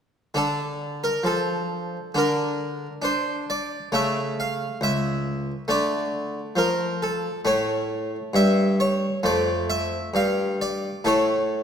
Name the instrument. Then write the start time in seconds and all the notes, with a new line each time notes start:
harpsichord
0.34 D3 D4 A4
1.04 A#4
1.23 F3 A4
2.15 D3 D4 A#4
3.02 D4 C5
3.50 D5
3.92 C#3 A3 E5
4.40 F5
4.81 C#2 E5
5.68 D3 A3 D5
6.56 F3 A#4
7.03 A4
7.45 A2 A3 C#5
8.34 G2 E5
8.80 C#5
9.23 F2 A3 D5
9.70 E5
10.14 G2 F5
10.61 D5
11.04 A2 A3 A4 C#5